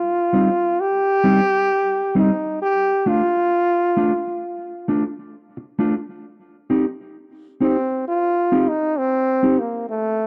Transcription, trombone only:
0.00 0.82 F4 loud
0.80 2.16 G4 loud
2.18 2.59 D#4 medium
2.62 3.10 G4 loud
3.09 4.89 F4 loud
7.62 8.04 C4 medium
8.08 8.70 F4 loud
8.68 9.00 D#4 loud
8.98 9.61 C4 loud
9.59 9.89 A#3 medium
9.90 10.27 A3 loud

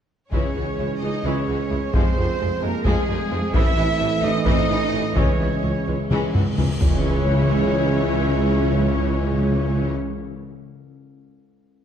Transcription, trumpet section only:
0.33 0.98 C#5 medium
1.03 1.25 D#5 medium
1.25 1.94 C#5 medium
1.94 2.62 C5 medium
2.63 2.85 A#4 medium
2.85 3.54 G#4 medium
3.54 4.22 E5 loud
4.23 4.45 D#5 medium
4.46 5.15 D#5 loud
5.17 6.11 C#5 medium
6.81 9.91 C#5 medium

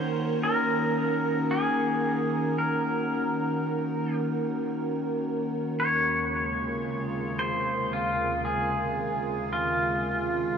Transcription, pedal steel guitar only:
0.00 0.46 C5 medium
0.43 1.54 A#4 medium
1.51 2.61 G#4 medium
2.58 4.15 A#4 medium
5.80 7.36 C#5 medium
7.39 7.95 C5 medium
7.93 8.44 F4 medium
8.45 9.52 G#4 medium
9.53 10.58 F4 medium

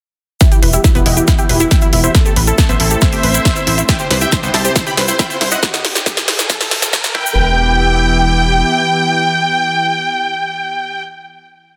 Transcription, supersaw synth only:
0.41 0.48 G4 medium
0.41 0.48 E5 loud
0.52 0.59 E4 medium
0.63 0.70 E4 medium
0.73 0.81 G4 medium
0.73 0.81 E5 medium
0.84 0.92 E4 medium
0.95 1.03 E4 medium
1.06 1.13 D#5 medium
1.06 1.13 F#5 medium
1.17 1.24 E4 medium
1.28 1.35 E4 medium
1.38 1.46 E5 medium
1.38 1.46 G5 medium
1.49 1.57 E4 medium
1.60 1.68 E4 medium
1.71 1.79 E5 medium
1.71 1.79 G5 medium
1.82 1.89 E4 medium
1.93 2.00 E4 medium
2.04 2.11 C5 medium
2.04 2.11 E5 medium
2.14 2.22 A4 medium
2.25 2.33 A4 medium
2.47 2.55 A4 medium
2.58 2.66 A4 medium
2.69 2.77 C5 medium
2.69 2.77 E5 medium
2.80 2.87 A4 medium
2.91 2.98 A4 medium
3.02 3.80 C5 medium
3.02 3.80 E5 loud
3.89 3.96 E5 medium
3.89 3.96 G5 loud
4.00 4.07 C5 medium
4.10 4.18 C5 medium
4.21 4.29 E5 medium
4.21 4.29 G5 medium
4.32 4.40 C5 medium
4.43 4.51 C5 medium
4.54 4.61 C5 medium
4.54 4.62 A5 medium
4.65 4.72 C5 medium
4.76 4.83 C5 medium
4.87 4.94 G5 medium
4.87 4.94 B5 medium
4.97 5.05 C5 medium
5.08 5.16 C5 medium
5.19 5.27 G5 medium
5.19 5.27 B5 medium
5.30 5.37 C5 medium
5.41 5.48 C5 medium
5.52 5.59 D#5 medium
5.52 5.59 F#5 medium
7.15 11.03 G5 loud

